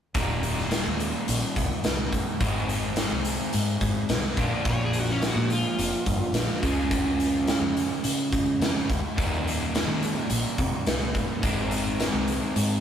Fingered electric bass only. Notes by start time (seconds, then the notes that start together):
0.15 D#1
0.87 D#2
1.29 A#1
1.57 C2
1.86 C2
2.40 G#1
3.12 C2
3.54 G#2
3.81 G#2
4.10 C2
4.37 A#1
4.66 A#1
5.36 A#2
5.79 F1
6.06 G2
6.33 A#1
6.63 C#2
7.61 F2
8.05 C#3
8.33 C#3
8.60 F2
8.90 D2
9.18 D#2
9.87 D#3
10.30 A#1
10.59 C3
10.87 C2
11.43 G#1
12.14 C2
12.56 G#2